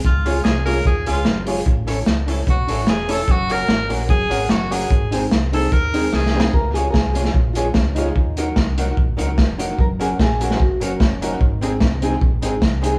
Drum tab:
HH |p-----o-----p-----o-----p-----o-----p-----o-----|p-----o-----p-----o-----p-----o-----p-----o-----|p-----o-----p-----o-----p-----o-----p-----o-----|p-----o-----p-----o-----p-----o-----------------|
SD |------------o-----------------------o-----------|------------o-----------------------o-----------|------------o-----------------------o-----------|------------o-----------------------o---o---o---|
BD |o-----------------------o-----------------------|o-----------------------o-----------------------|o-----------------------o-----------------------|o-----------------------o-----------------------|

HH |------x-----------x-----------x-----------x-----|------x-----------x-----------x-----------x-----|------x-----------x-----------x-----------x-----|------x-----------x-----------x-----------x-----|
SD |------------o--------o--------------o-----------|------------o-----------------------o-----------|------------o--------o--------------o-----------|------------o-----------------------o-----------|
BD |o-----------o-----------o-----------o-----------|o-----------o-----------o-----------o-----------|o-----------o-----------o-----------o-----------|o-----------o-----------o-----------o-----------|